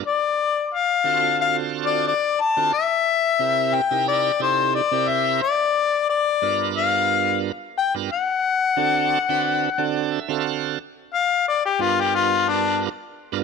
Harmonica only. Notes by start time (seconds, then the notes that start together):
0.07 D5
0.74 F5
1.42 F5
1.85 D5
2.07 D5
2.40 A5
2.73 E5
3.75 G5
4.08 D5
4.43 C5
4.75 D5
5.08 E5
5.42 D5
6.10 D5
6.78 F5
7.78 G5
8.12 F#5
11.14 F5
11.48 D5
11.66 G4
11.81 F4
12.00 G4
12.15 F4
12.48 D4